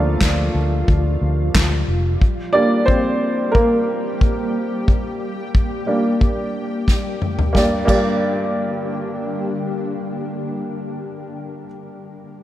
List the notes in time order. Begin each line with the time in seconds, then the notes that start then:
Already playing: D2 F3 G3 A3 A#3 C4 D4 F4 A4 A#4 C5
0.21 D2, kick, snare, clap
0.54 D2
0.88 D2, kick
1.21 D2
1.55 D2, kick, snare, clap
1.88 F1
2.22 A#3 G4, kick
2.53 G3 A#3 D4 D5
2.86 C4 C5, kick
3.52 A#3 A#4, kick
4.21 kick
4.88 kick
5.55 kick
5.86 G3 A#3 D4
6.21 kick
6.88 kick, snare
7.22 mid tom
7.39 floor tom
7.53 G2 D3 G3 A#3 G4, kick, snare
7.57 D5
7.85 G2 A#3 G4 D5, kick, crash